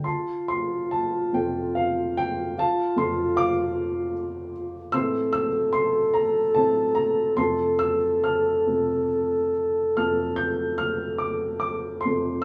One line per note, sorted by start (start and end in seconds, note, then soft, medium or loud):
0.04 2.52 F4 medium
0.04 0.90 A5 medium
0.04 0.47 C6 medium
0.48 0.92 C6 medium
0.91 1.30 A5 medium
1.33 2.52 F2 soft
1.33 2.53 C3 soft
1.33 2.53 A3 soft
1.33 1.73 G5 medium
1.75 2.13 F5 medium
2.17 2.58 G5 loud
2.56 2.61 G4 medium
2.56 3.35 F5 medium
2.56 2.99 A5 loud
2.60 4.64 F4 loud
2.96 4.11 F2 medium
2.96 4.11 F3 medium
2.96 4.11 A3 medium
2.96 3.38 C6 medium
3.36 4.51 F5 medium
3.36 4.51 D6 loud
4.92 5.47 A2 medium
4.92 5.47 E3 medium
4.92 5.47 C4 medium
4.92 4.99 B4 loud
4.92 5.71 C6 medium
4.92 5.31 E6 loud
4.98 7.34 A4 loud
5.33 5.75 E6 loud
5.73 6.11 C6 loud
6.14 6.52 A#5 medium
6.55 6.92 A2 soft
6.55 6.92 E3 soft
6.55 6.93 C4 medium
6.55 6.93 A5 medium
6.95 7.39 A#5 medium
7.37 7.94 F2 soft
7.37 7.94 C3 soft
7.37 7.95 A3 medium
7.37 7.42 B4 medium
7.37 8.22 A5 medium
7.37 7.77 C6 medium
7.41 12.18 A4 loud
7.79 8.24 E6 medium
8.24 9.51 A5 medium
8.24 9.51 F6 medium
8.67 9.07 F2 soft
8.67 9.07 C3 soft
8.67 9.07 A3 soft
9.97 12.04 F2 soft
9.97 12.04 C3 soft
9.97 12.04 A3 medium
9.97 11.21 A5 medium
9.97 10.42 F6 medium
10.36 10.82 G6 medium
10.78 11.24 F6 loud
11.18 11.58 D6 medium
11.60 12.05 D6 medium
12.01 12.44 C6 medium
12.05 12.43 F2 medium
12.05 12.44 C3 soft
12.05 12.44 A3 medium